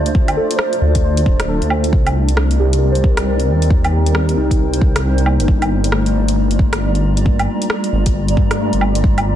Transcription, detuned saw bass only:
Already playing: D2
0.81 D2
1.26 D1
1.62 D2
1.93 C2
2.60 C2
3.48 D#2
4.37 C2
4.95 C2
5.40 G1
5.48 G1
6.15 G1
7.93 G1
8.37 G2
8.73 G1

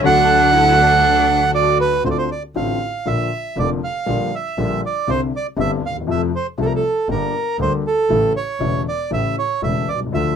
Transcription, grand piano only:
0.01 D2 D3 F#3 A3
0.05 F#4
2.04 D2 D3 A3 C4 F4
2.55 A1 A2 D3 A3 C4 F4
3.06 A#1 A#2 D3 F3 A#3 F4
3.56 F1 F2 D3 F3 A#3 F4
4.06 A#1 A#2 D3 G3 A#3 F4
4.58 A#1 A#2 D3 G3 A#3 F4
5.07 C2 C3 D3 G3 C4 E4
5.57 G1 G2 D3 G3 C4 E4
5.89 D2
5.95 D#2
6.01 E2
6.07 F2 C3 F3 A3 E4
6.58 C2 C3 F3 A3 E4
7.09 G1 G2 D3 G3 A#3 G4
7.59 D2 D3 G3 A#3 G4
8.10 A1 A2 C#3 E3 A3 E4
8.60 E1 E2 C#3 E3 A3 E4
9.10 A1 A2 C#3 E3 A3 E4
9.62 E1 E2 C#3 E3 A3 E4
9.94 B1
10.00 C2
10.07 C#2
10.12 D2 D3 F3 A3 F4

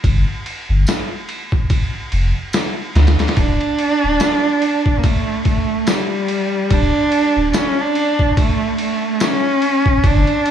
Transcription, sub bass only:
0.04 G1
0.69 G1
2.13 F1
2.95 D2
3.38 D1
4.04 D1
6.71 D1
7.37 D1
10.04 G1

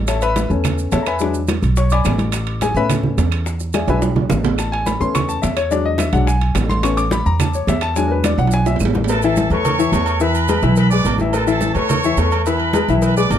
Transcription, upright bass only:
Already playing: A1
0.50 E2
0.92 E2
1.62 B1
2.05 A1
2.75 A2
3.18 E2
3.88 B1
4.30 A1
5.00 E2
5.43 E2
6.13 B1
6.55 A1
7.26 E2
7.67 E2
8.38 B1
8.80 A1
9.50 E2
9.92 E2
10.63 B1
11.05 A1
11.75 E2
12.17 E2
12.88 B1
13.30 A1

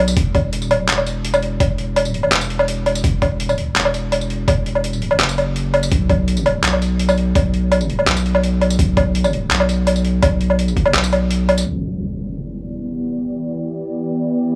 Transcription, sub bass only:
Already playing: B1
0.17 E1
0.67 D#1
0.88 E1
1.60 E1
2.32 E1
3.04 E1
3.76 E1
4.48 E1
5.20 F#1
5.92 B1
6.63 B1
7.35 B1
8.07 B1
8.79 B1
9.51 B1
10.23 B1
10.94 B1

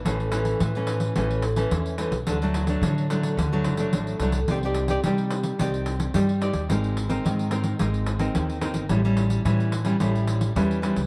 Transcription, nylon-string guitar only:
0.06 A2 E3 A3 C#4
0.32 E3 A3 C#4
0.62 E3
0.76 E3 A3 C#4
1.16 A2 E3 A3 C#4
1.57 E3 A3 C#4
1.72 E3
1.98 E3 A3 C#4
2.27 D3 F#3 A3 D4
2.42 F#3 A3 D4
2.69 F#3 A3 D4
2.83 A2
3.10 F#3 A3 D4
3.39 D3
3.53 F#3 A3 D4
3.79 F#3 A3 D4
3.94 A2
4.21 F#3 A3 D4
4.50 C4 D#4 G4 D5
4.64 D#4 G4 D5
4.89 D#4 G4 D5
5.05 G3 D#4 G4 D5
5.60 C4 D#4 G4 D5
6.14 G3 D#4 G4 D5
6.41 D#4 G4 D5
6.70 G#3 C4 D#4 A#4
7.09 C4 D#4 A#4
7.25 D#3
7.51 C4 D#4 A#4
7.80 G#3 C4 D#4 A#4
8.20 C4 D#4 A#4
8.36 D#3
8.61 C4 D#4 A#4
8.90 A2 G3 C#4 E4
9.05 G3 C#4 E4
9.45 E3 G3 C#4 E4
9.86 G3 C#4 E4
10.00 A2 G3 C#4 E4
10.56 E3 G3 C#4 E4
10.82 G3 C#4 E4

